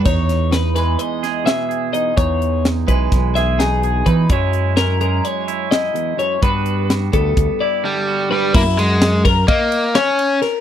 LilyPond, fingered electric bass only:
\new Staff \with { instrumentName = "Fingered electric bass" } { \clef bass \time 9/8 \key fis \mixolydian \tempo 4. = 85 e,2 r2 r8 | e,4. b,,8 b,,2 e8 | fis,2 r2 r8 | g,4. d,8 d,16 r2 r16 |
fis,2 r2 r8 | }